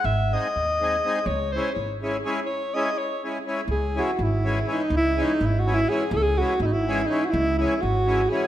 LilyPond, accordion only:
\new Staff \with { instrumentName = "Accordion" } { \time 5/8 \key cis \minor \tempo 4 = 124 r8 <gis bis dis' gis'>8 r8 <gis bis dis' gis'>8 <gis bis dis' gis'>8 | r8 <gis cis' e' gis'>8 r8 <gis cis' e' gis'>8 <gis cis' e' gis'>8 | r8 <gis cis' e' gis'>8 r8 <gis cis' e' gis'>8 <gis cis' e' gis'>8 | r8 <e gis cis' e' gis'>8 r8 <e gis cis' e' gis'>8 <e gis cis' e' gis'>8 |
r8 <e gis cis' e' gis'>8 r8 <e gis cis' e' gis'>8 <e gis cis' e' gis'>8 | r8 <e gis cis' e' gis'>8 r8 <e gis cis' e' gis'>8 <e gis cis' e' gis'>8 | r8 <e gis cis' e' gis'>8 r8 <e gis cis' e' gis'>8 <e gis cis' e' gis'>8 | }